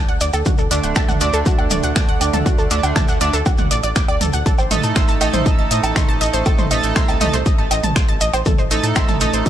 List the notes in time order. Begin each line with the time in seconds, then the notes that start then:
0.09 D2 F#5 F#6, closed hi-hat
0.21 D2 D5 D6, closed hi-hat, shekere
0.33 D2 A4 A5, closed hi-hat, low woodblock, shekere
0.45 D2 F#4 F#5, kick, closed hi-hat, mid tom, shekere
0.58 D2 A4 A5, shekere
0.71 D2 D3 A3 D4 D5 D6, closed hi-hat, shekere
0.83 D1 F#5 F#6, closed hi-hat, shekere
0.95 D2 A5 A6, finger snap, kick, snare, closed hi-hat, low woodblock, shekere
1.08 D2 F#5 F#6, snare, mid tom, shekere
1.21 D2 D3 A3 D4 D5 D6, closed hi-hat, shekere
1.33 D2 A4 A5, closed hi-hat, shekere
1.46 D2 F#4 F#5, kick, closed hi-hat, shekere
1.58 D2 F#5 F#6, low woodblock
1.71 D1 D5 D6, closed hi-hat, mid tom, shekere
1.83 D2 F#5 F#6, closed hi-hat, shekere
1.96 D2 A5 A6, finger snap, kick, snare, closed hi-hat, open hi-hat, shekere
2.09 D2 F#5 F#6
2.21 D2 D5 D6, closed hi-hat, low woodblock, shekere
2.33 D2 A4 A5, closed hi-hat, mid tom, shekere
2.46 D2 F#4 F#5, kick, closed hi-hat, shekere
2.58 D2 A4 A5, shekere
2.71 D2 D3 A3 D4 D5 D6, closed hi-hat, shekere
2.83 D2 F#5 F#6, closed hi-hat, low woodblock, shekere
2.96 D2 A5 A6, finger snap, kick, snare, closed hi-hat, mid tom, shekere
3.08 D2 F#5 F#6, snare, shekere
3.21 D2 D3 A3 D4 D5 D6, closed hi-hat, shekere
3.33 D2 A4 A5, closed hi-hat, shekere
3.46 D2 F#4 F#5, kick, closed hi-hat, low woodblock, shekere
3.58 D2 F#5 F#6, mid tom, shekere
3.71 A1 D5 D6, closed hi-hat, shekere
3.83 A1 D5 D6, closed hi-hat, shekere
3.96 D2 D6, finger snap, kick, snare, closed hi-hat, shekere
4.08 D2 D5 D6, closed hi-hat, low woodblock
4.21 D2 A4 A5, closed hi-hat, mid tom, shekere
4.33 D2 F#5 F#6, closed hi-hat, shekere
4.46 A1 A4 A5, kick, closed hi-hat, shekere
4.58 A1 C5 C6, low woodblock, shekere
4.71 A1 A3 D#4 A4 D#5 D#6, closed hi-hat, mid tom, shekere
4.83 A2 A5 A6, closed hi-hat, shekere
4.96 A1 C6, finger snap, kick, snare, closed hi-hat, shekere
5.08 A1 A5 A6, snare, shekere
5.21 A1 A3 D#4 A4 D#5 D#6, closed hi-hat, low woodblock, shekere
5.34 A1 C5 C6, closed hi-hat, mid tom, shekere
5.46 A1 D#5 D#6, kick, closed hi-hat, shekere
5.59 A1 A5 A6
5.71 A2 D#5 D#6, closed hi-hat, shekere
5.83 A1 A5 A6, closed hi-hat, low woodblock, shekere
5.96 A1 C6, finger snap, kick, snare, closed hi-hat, mid tom, open hi-hat, shekere
6.09 A1 A5 A6
6.21 A1 D#5 D#6, closed hi-hat, shekere
6.34 A1 C5 C6, closed hi-hat, shekere
6.46 A1 A4 A5, kick, closed hi-hat, low woodblock, shekere
6.58 A1 C5 C6, mid tom, shekere
6.71 A1 A3 D#4 A4 D#5 D#6, closed hi-hat, shekere
6.83 A1 A5 A6, closed hi-hat, shekere
6.96 C2 C6, finger snap, kick, snare, closed hi-hat, shekere
7.08 C2 A5 A6, snare, low woodblock, shekere
7.21 C2 A3 D#4 A4 D#5 D#6, closed hi-hat, mid tom, shekere
7.33 C2 C5 C6, closed hi-hat, shekere
7.46 A1 D#5 D#6, kick, closed hi-hat, shekere
7.58 A1 A5 A6
7.71 A1 D#5 D#6, closed hi-hat, low woodblock, shekere
7.83 A1 A5 A6, closed hi-hat, mid tom, shekere
7.96 A1 C6, finger snap, kick, snare, closed hi-hat, shekere
8.08 A1 A5 A6, closed hi-hat
8.21 A1 D#5 D#6, closed hi-hat, shekere
8.33 A1 C5 C6, closed hi-hat, low woodblock, shekere
8.46 A1 A4 A5, kick, closed hi-hat, mid tom, shekere
8.58 A1 C5 C6, shekere
8.71 A1 A3 D#4 A4 D#5 D#6, closed hi-hat, shekere
8.83 A2 A5 A6, closed hi-hat, shekere
8.95 A1 C6, finger snap, kick, snare, closed hi-hat, low woodblock, shekere
9.08 A1 A5 A6, snare, mid tom, shekere
9.21 A1 A3 D#4 A4 D#5 D#6, closed hi-hat, shekere
9.34 A1 C5 C6, closed hi-hat, shekere
9.46 A1 D#5 D#6, kick, closed hi-hat, shekere